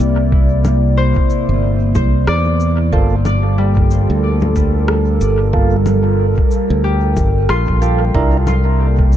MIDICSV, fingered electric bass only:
0, 0, Header, 1, 2, 480
1, 0, Start_track
1, 0, Tempo, 652174
1, 238, Time_signature, 4, 2, 24, 8
1, 6748, End_track
2, 0, Start_track
2, 0, Title_t, "Fingered electric bass"
2, 0, Program_c, 0, 33
2, 0, Note_on_c, 0, 36, 81
2, 831, Note_off_c, 0, 36, 0
2, 1096, Note_on_c, 0, 31, 75
2, 1418, Note_off_c, 0, 31, 0
2, 1437, Note_on_c, 0, 36, 76
2, 1653, Note_off_c, 0, 36, 0
2, 1675, Note_on_c, 0, 40, 89
2, 2137, Note_off_c, 0, 40, 0
2, 2156, Note_on_c, 0, 31, 92
2, 2990, Note_off_c, 0, 31, 0
2, 3016, Note_on_c, 0, 38, 79
2, 3818, Note_off_c, 0, 38, 0
2, 3834, Note_on_c, 0, 31, 81
2, 4668, Note_off_c, 0, 31, 0
2, 4933, Note_on_c, 0, 38, 81
2, 5256, Note_off_c, 0, 38, 0
2, 5275, Note_on_c, 0, 31, 79
2, 5492, Note_off_c, 0, 31, 0
2, 5516, Note_on_c, 0, 34, 86
2, 5978, Note_off_c, 0, 34, 0
2, 5996, Note_on_c, 0, 36, 90
2, 6748, Note_off_c, 0, 36, 0
2, 6748, End_track
0, 0, End_of_file